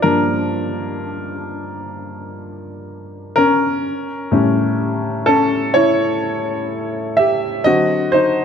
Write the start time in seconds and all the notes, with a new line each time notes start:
Already playing: F4 D5
0.02 G2 F3 A#3 D4 A#4
3.36 C#4 A#4
4.31 A2 G3 C#4
5.26 C#4 A4
5.74 E4 C#5
7.17 G4 E5
7.64 D3 F#3 C4 F#4 D#5
8.12 D#4 C5